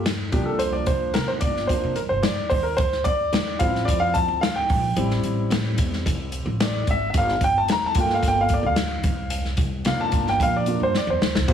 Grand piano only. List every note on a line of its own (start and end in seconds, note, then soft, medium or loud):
0.32 1.68 F3 medium
0.32 1.68 A#3 medium
0.32 1.68 D4 medium
0.32 0.47 G4 medium
0.46 0.60 A4 medium
0.59 0.74 C5 medium
0.73 0.87 D5 medium
0.87 1.13 C5 medium
1.14 1.29 A#4 medium
1.28 1.33 C5 medium
1.41 1.70 D5 medium
1.67 1.94 F3 soft
1.67 1.94 A#3 soft
1.67 1.94 D4 medium
1.67 1.97 C5 medium
1.96 2.01 A#4 medium
2.09 2.24 C5 medium
2.23 2.52 D5 medium
2.49 2.65 C5 medium
2.63 2.78 A#4 medium
2.77 3.03 C5 loud
3.04 3.56 D5 loud
3.59 4.38 F3 medium
3.59 4.38 C4 medium
3.59 4.39 E4 medium
3.59 3.88 F5 medium
3.85 3.99 D5 loud
4.00 4.15 F5 loud
4.14 4.43 A5 medium
4.41 4.54 F5 medium
4.56 5.06 G5 medium
4.96 7.10 G3 medium
4.96 7.11 C4 soft
4.96 7.11 E4 medium
6.62 6.89 D5 medium
6.90 7.08 E5 medium
7.10 7.16 E5 medium
7.18 7.41 F5 loud
7.44 7.57 G5 loud
7.58 7.70 A5 medium
7.72 7.84 A#5 loud
7.86 7.97 A5 loud
7.97 8.74 A3 medium
7.97 8.74 A#3 medium
7.97 8.74 F4 medium
7.97 8.12 G5 medium
8.14 8.26 F5 medium
8.28 8.39 G5 medium
8.41 8.53 F5 medium
8.54 8.65 D5 medium
8.66 9.43 F5 medium
9.86 10.63 A#3 medium
9.86 10.63 D4 medium
9.86 10.64 F4 medium
9.86 10.00 F5 loud
10.01 10.28 A5 medium
10.29 10.42 G5 medium
10.43 10.55 F5 loud
10.56 10.83 D5 medium
10.67 10.91 A#3 medium
10.67 10.92 D4 soft
10.67 10.92 F4 soft
10.83 10.96 C5 medium
10.97 11.09 D5 medium
11.10 11.47 C5 medium
11.48 11.53 A#3 medium
11.48 11.53 F4 medium
11.48 11.53 G4 medium
11.48 11.53 C5 medium